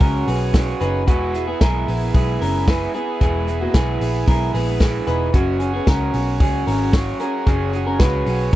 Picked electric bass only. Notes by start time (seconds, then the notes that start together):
0.01 C#2
0.28 B1
0.81 F#1
1.08 E1
1.61 B1
1.88 A#1
2.15 B1
2.42 F#1
3.21 E1
3.74 B1
4.01 A#1
4.28 B1
4.54 A#1
5.08 E1
5.34 F#1
5.87 C#2
6.14 B1
6.40 C#2
6.67 G#1
7.47 F#1
8.00 C#2
8.27 B1